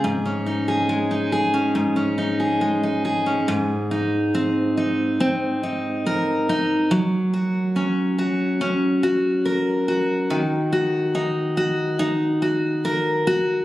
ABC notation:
X:1
M:4/4
L:1/16
Q:1/4=70
K:Abmix
V:1 name="Steel-string acoustic guitar"
A,, D E A A, E A D A,, D E A A, E A D | A,,2 E2 C2 E2 C2 E2 B2 E2 | G,2 G2 D2 G2 D2 G2 B2 G2 | E,2 G2 E2 G2 E2 G2 B2 G2 |]